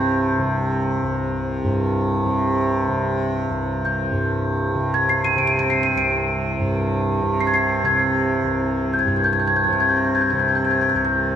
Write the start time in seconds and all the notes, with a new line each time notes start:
Already playing: C2 G2 C3 C4 G6
0.39 C3
1.03 C2
1.64 G2
2.26 C3
2.88 C3
3.50 C2
3.85 G6
4.11 G2
4.75 C3
4.94 G#6
5.09 C7
5.25 D#7
5.35 C3 D7
5.47 D#7
5.59 D7
5.70 C7
5.83 D#7
5.96 C2 D7
6.59 G2
7.22 C3
7.40 C7
7.47 G#6
7.54 C7
7.83 C3 G#6
8.44 C2
8.93 G6
8.99 G#6
9.05 G2 G6
9.16 G#6
9.24 G6
9.33 G#6
9.40 G6
9.47 G#6
9.56 G6
9.64 C3 G#6
9.73 G6
9.80 G#6
9.89 G6
9.97 G#6
10.04 G6
10.15 G#6
10.21 G6
10.30 C3 G#6
10.39 G6
10.49 G#6
10.55 G6
10.65 G#6
10.71 G6
10.81 G#6
10.89 G6
10.94 C2 G#6
11.05 G6